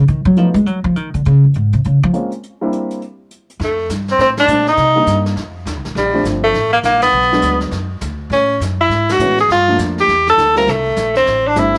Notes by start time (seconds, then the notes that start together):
0.08 D#3, closed hi-hat
0.25 F#3
0.36 F3 F#3 A3 B3 D#4 F4, closed hi-hat
0.54 G#3, closed hi-hat
0.66 F#3, closed hi-hat
0.84 F3
0.96 D#3, closed hi-hat
1.14 D3, closed hi-hat
1.25 C#3, closed hi-hat
1.44 F2
1.54 G#2, closed hi-hat
1.73 C3, closed hi-hat
1.84 C#3, closed hi-hat
2.03 F3
2.13 G#3 A#3 C4 C#4 F4, closed hi-hat
2.32 closed hi-hat
2.43 closed hi-hat
2.61 G3 A#3 C4 D4 E4
2.72 closed hi-hat
2.90 closed hi-hat
3.02 closed hi-hat
3.31 closed hi-hat
3.50 closed hi-hat
3.60 F2, brush sweep, snare
3.64 A3
3.89 G2, snare, hi-hat pedal
4.08 C4, snare
4.18 A2 C4, brush sweep, snare
4.37 D4, snare, ride
4.47 A#2 G3 A3 C4 D4, hi-hat pedal
4.67 D#4, snare
4.77 C3, brush sweep, snare
4.96 G3 A#3 D4 D#4
5.06 G2, snare, hi-hat pedal
5.26 snare
5.36 F2, brush sweep, snare
5.65 D#2, snare, hi-hat pedal
5.76 C2
5.85 A1, snare
5.95 A#1 G3, brush sweep, snare
6.13 F3 A3 C4 D4
6.24 G1, snare, hi-hat pedal
6.44 A3
6.54 A1, brush sweep, snare
6.73 A#3
6.83 A#1 A#3, snare, hi-hat pedal
7.01 B3, snare, ride
7.12 B1, brush sweep
7.23 snare
7.32 F#3 G#3 B3 D4, snare
7.42 D2, snare, hi-hat pedal
7.60 snare
7.71 F#2, brush sweep, snare
8.01 D2, snare, hi-hat pedal
8.30 A2 C#4, brush sweep, snare
8.60 F#2, snare, hi-hat pedal
8.81 E4
8.89 G#2, brush sweep, snare
9.09 F#4, snare, ride
9.19 A2 E3 G#3 B3 C#4, hi-hat pedal
9.38 G#4, snare
9.48 G2 F4, brush sweep, snare
9.68 F3 A3 A#3 D4
9.78 F2, snare, hi-hat pedal
9.98 G4, snare
10.08 E2, brush sweep, snare
10.27 A4, snare
10.37 D2, snare, hi-hat pedal
10.56 G3 A3 C4 F4 A#4, snare
10.67 C2 A3, brush sweep, snare
10.96 A#1, snare, hi-hat pedal
11.15 C4, snare
11.26 A1, brush sweep, snare
11.48 D4
11.56 G1 G3 A3 C4 D4 E4, snare, hi-hat pedal
11.75 snare